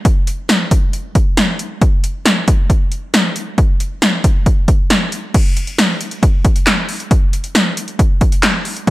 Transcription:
0.05 kick loud
0.05 closed hi-hat medium
0.27 closed hi-hat medium
0.49 snare loud
0.49 closed hi-hat medium
0.71 kick medium
0.71 closed hi-hat medium
0.93 closed hi-hat medium
1.15 kick medium
1.15 closed hi-hat medium
1.37 snare loud
1.37 closed hi-hat medium
1.59 closed hi-hat medium
1.81 kick loud
1.81 closed hi-hat medium
2.04 closed hi-hat medium
2.26 snare loud
2.26 closed hi-hat medium
2.48 kick medium
2.48 closed hi-hat medium
2.70 kick medium
2.70 closed hi-hat medium
2.92 closed hi-hat medium
3.14 snare loud
3.14 closed hi-hat medium
3.36 closed hi-hat medium
3.58 kick loud
3.58 closed hi-hat medium
3.80 closed hi-hat medium
4.02 snare loud
4.02 closed hi-hat medium
4.24 kick medium
4.24 closed hi-hat medium
4.46 kick medium
4.46 closed hi-hat medium
4.68 kick medium
4.68 closed hi-hat medium
4.90 snare loud
4.90 closed hi-hat medium
5.12 closed hi-hat medium
5.34 kick loud
5.34 closed hi-hat medium
5.34 crash loud
5.57 closed hi-hat medium
5.67 closed hi-hat medium
5.78 snare loud
5.78 closed hi-hat medium
6.01 closed hi-hat medium
6.11 closed hi-hat soft
6.23 kick medium
6.23 closed hi-hat medium
6.45 kick medium
6.45 closed hi-hat medium
6.56 closed hi-hat medium
6.67 snare loud
6.67 clap loud
6.67 closed hi-hat medium
6.89 open hi-hat medium
7.00 closed hi-hat soft
7.11 kick loud
7.11 closed hi-hat medium
7.33 closed hi-hat medium
7.44 closed hi-hat medium
7.55 snare loud
7.55 closed hi-hat medium
7.77 closed hi-hat medium
7.88 closed hi-hat medium
7.99 kick medium
7.99 closed hi-hat medium
8.21 kick medium
8.21 closed hi-hat medium
8.32 closed hi-hat medium
8.43 snare loud
8.43 clap loud
8.43 closed hi-hat medium
8.65 open hi-hat medium
8.76 closed hi-hat soft
8.87 closed hi-hat medium

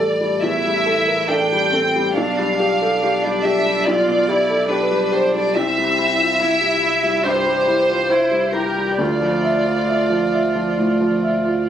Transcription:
0.00 0.37 A1 soft
0.00 2.17 A1 medium
0.00 0.21 G3 soft
0.00 0.86 A4 soft
0.00 1.08 A#4 soft
0.00 0.41 D5 medium
0.21 0.55 G3 soft
0.41 0.76 E2 soft
0.41 1.29 E4 soft
0.41 1.28 E5 medium
0.65 0.98 G3 soft
0.86 1.20 A4 soft
1.08 1.29 A#4 soft
1.27 1.73 D4 soft
1.27 1.64 A4 soft
1.27 2.15 G5 medium
1.52 1.85 G3 soft
1.71 2.14 C4 soft
1.71 2.07 A4 soft
1.96 2.16 G3 soft
2.14 5.57 B1 medium
2.14 3.83 B1 soft
2.14 2.57 D4 medium
2.14 3.20 F5 medium
2.39 2.72 G3 soft
2.58 3.88 D4 medium
2.58 2.93 G4 soft
2.82 3.02 A4 soft
3.03 3.36 G4 soft
3.22 3.57 G3 soft
3.22 3.43 D5 medium
3.43 3.78 G4 soft
3.43 3.85 E5 medium
3.65 3.99 G3 soft
3.85 5.52 B1 medium
3.85 4.31 F4 medium
3.85 4.70 D5 medium
4.08 4.41 B2 soft
4.28 4.70 E4 medium
4.28 4.62 G4 soft
4.50 4.71 A4 soft
4.69 5.58 D4 medium
4.69 5.05 G4 soft
4.69 5.12 B4 medium
4.91 5.25 G3 soft
5.12 5.47 G4 soft
5.12 5.34 C5 medium
5.34 5.56 G3 soft
5.34 5.55 D5 medium
5.55 7.21 C2 medium
5.55 9.01 C2 medium
5.55 6.42 C4 medium
5.55 7.25 E5 loud
5.78 6.11 G3 soft
5.99 6.32 E4 medium
6.20 6.41 F4 soft
6.40 6.74 E4 soft
6.40 7.27 E4 medium
6.61 6.95 G3 soft
6.83 7.17 E4 soft
7.03 7.38 G3 soft
7.25 7.60 G2 soft
7.25 8.13 G4 medium
7.25 8.55 C5 medium
7.46 7.81 G3 soft
7.67 8.02 E4 soft
7.89 8.11 F4 soft
8.09 8.45 E4 soft
8.09 8.55 E4 medium
8.31 8.67 G3 soft
8.53 8.90 E4 soft
8.53 9.02 G4 soft
8.53 8.99 A#4 medium
8.76 8.99 G3 soft
8.98 10.75 D2 soft
8.98 11.69 D2 medium
8.98 11.69 F4 soft
8.98 11.65 D5 medium
9.21 9.58 F3 soft
9.43 9.80 E5 soft
9.65 9.89 F4 soft
9.87 10.24 E5 soft
10.10 10.47 F3 soft
10.33 10.70 E5 soft
10.55 10.92 F3 soft
10.77 11.14 A2 soft
11.00 11.37 F3 soft
11.23 11.60 E5 soft
11.45 11.69 F4 soft

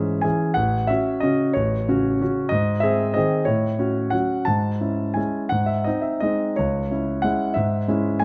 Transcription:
0.00 0.26 G#2 soft
0.00 0.21 E3 soft
0.00 0.21 C#4 soft
0.00 0.21 G#4 soft
0.00 0.23 E5 soft
0.21 0.54 E3 soft
0.21 0.54 C#4 soft
0.21 0.54 G#4 soft
0.21 0.56 G#5 soft
0.54 0.88 A1 soft
0.54 0.88 F#5 medium
0.87 1.19 C#4 soft
0.87 1.20 F#4 soft
0.87 1.22 E5 medium
1.20 1.52 C#3 soft
1.20 1.53 C#4 soft
1.20 1.53 F#4 soft
1.20 1.54 D#5 medium
1.53 1.87 A1 soft
1.53 1.87 C#5 medium
1.88 2.18 C#3 soft
1.88 2.18 C#4 soft
1.88 2.18 F#4 soft
2.21 2.49 C#3 soft
2.21 2.49 C#4 soft
2.21 2.49 F#4 soft
2.49 2.82 G#2 soft
2.49 2.82 D#5 medium
2.80 3.12 C4 soft
2.80 3.13 G#4 soft
2.80 3.14 E5 medium
3.14 3.45 D#3 soft
3.14 3.45 C4 soft
3.14 3.45 G#4 soft
3.14 3.47 D#5 medium
3.45 3.78 A2 soft
3.45 4.11 C#5 medium
3.79 4.09 C#4 soft
3.79 4.10 F#4 soft
4.10 4.44 F#3 soft
4.10 4.44 C#4 soft
4.10 4.44 F#4 soft
4.10 4.46 F#5 medium
4.45 4.80 G#2 soft
4.45 5.16 A5 medium
4.81 5.13 C#4 soft
4.81 5.13 E4 soft
5.14 5.48 G#3 soft
5.14 5.48 C#4 soft
5.14 5.49 E4 soft
5.14 5.51 G#5 soft
5.49 5.85 G#2 soft
5.49 5.68 F#5 medium
5.66 5.85 E5 soft
5.84 6.19 C4 soft
5.84 6.19 D#4 soft
5.84 6.03 D#5 soft
6.02 6.21 E5 soft
6.20 6.55 G#3 soft
6.20 6.55 C4 soft
6.20 6.55 D#4 soft
6.20 6.57 D#5 soft
6.56 6.91 C#2 soft
6.56 7.24 C#5 soft
6.91 7.21 C#4 soft
6.91 7.21 E4 soft
7.22 7.54 G#3 soft
7.22 7.54 C#4 soft
7.22 7.54 E4 soft
7.22 7.56 F#5 medium
7.54 7.88 G#2 soft
7.54 8.20 E5 medium
7.88 8.18 G#3 soft
7.88 8.19 C#4 soft
7.88 8.19 E4 soft
8.20 8.24 G#5 medium

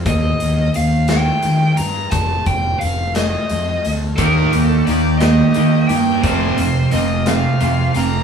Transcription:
0.06 0.32 D#2 medium
0.06 0.71 D#5 loud
0.06 kick loud
0.06 closed hi-hat medium
0.40 0.68 D#2 medium
0.40 closed hi-hat medium
0.74 1.28 D#2 medium
0.74 1.09 F5 loud
0.74 closed hi-hat medium
1.08 1.74 G5 loud
1.08 snare medium
1.08 closed hi-hat medium
1.42 1.70 D#3 medium
1.42 closed hi-hat medium
1.77 2.05 G2 medium
1.77 2.10 A#5 loud
1.77 closed hi-hat medium
2.11 2.38 F1 medium
2.11 2.44 A5 loud
2.11 kick loud
2.11 closed hi-hat medium
2.46 2.73 F1 medium
2.46 2.79 G5 loud
2.46 kick medium
2.46 closed hi-hat medium
2.79 3.34 F1 medium
2.79 3.12 F5 medium
2.79 closed hi-hat medium
3.15 3.89 D#5 medium
3.15 snare loud
3.15 closed hi-hat medium
3.49 3.77 F2 medium
3.49 closed hi-hat medium
3.85 4.11 D2 medium
3.85 closed hi-hat medium
4.16 4.45 D#2 medium
4.16 4.86 D#3 medium
4.16 4.55 A#3 medium
4.16 4.67 A#4 medium
4.16 kick loud
4.16 closed hi-hat medium
4.20 4.53 D#4 medium
4.20 4.51 G4 medium
4.52 4.80 D#2 medium
4.52 4.84 D#3 medium
4.52 4.88 A#3 medium
4.52 4.88 D#4 medium
4.52 4.89 G4 medium
4.52 closed hi-hat medium
4.67 4.88 A4 medium
4.85 5.40 D#2 medium
4.85 5.55 D#3 medium
4.85 5.24 A#3 medium
4.85 5.18 D5 medium
4.85 closed hi-hat medium
4.90 5.21 D#4 medium
4.90 5.20 G4 loud
5.19 5.52 D#3 medium
5.19 5.57 D#4 medium
5.19 5.58 G4 medium
5.19 5.85 D#5 medium
5.19 snare loud
5.19 closed hi-hat medium
5.24 5.57 A#3 medium
5.54 6.23 D#3 medium
5.54 5.83 D#3 medium
5.54 5.92 A#3 medium
5.54 closed hi-hat medium
5.58 5.90 D#4 medium
5.58 5.88 G4 medium
5.87 6.25 G2 medium
5.87 6.21 D#3 medium
5.87 6.22 G4 medium
5.87 6.21 G5 medium
5.87 closed hi-hat medium
5.92 6.24 A#3 medium
5.92 6.23 D#4 medium
6.22 6.50 F1 medium
6.22 6.92 F2 medium
6.22 6.93 C3 medium
6.22 6.60 F3 medium
6.22 6.60 A#3 loud
6.22 6.59 C4 loud
6.22 6.57 F4 medium
6.22 6.92 C5 medium
6.22 kick loud
6.22 closed hi-hat medium
6.58 6.85 F1 medium
6.58 6.89 F2 medium
6.58 6.89 C3 medium
6.58 6.91 F3 medium
6.58 6.93 A#3 medium
6.58 6.93 C4 medium
6.58 6.94 F4 medium
6.58 closed hi-hat medium
6.91 7.45 F1 medium
6.91 7.24 F2 medium
6.91 7.24 C3 medium
6.91 7.28 F3 medium
6.91 7.28 A#3 medium
6.91 7.27 C4 medium
6.91 7.28 D#5 medium
6.91 closed hi-hat medium
6.95 7.25 F4 medium
7.26 7.58 F2 medium
7.26 7.58 C3 medium
7.26 7.59 F3 medium
7.26 7.61 A#3 medium
7.26 7.61 C4 medium
7.26 7.63 F4 medium
7.26 7.92 F5 medium
7.26 snare loud
7.26 closed hi-hat medium
7.60 7.92 F2 medium
7.60 7.87 F2 medium
7.60 7.92 C3 medium
7.60 7.97 F3 medium
7.60 7.97 A#3 medium
7.60 7.95 C4 medium
7.60 7.94 F4 medium
7.60 closed hi-hat medium
7.94 8.21 F1 medium
7.94 8.23 F2 medium
7.94 8.23 C3 medium
7.94 8.23 F3 medium
7.94 8.23 A#3 medium
7.94 8.23 C4 medium
7.94 8.23 F4 medium
7.94 8.23 A#5 medium
7.94 closed hi-hat medium

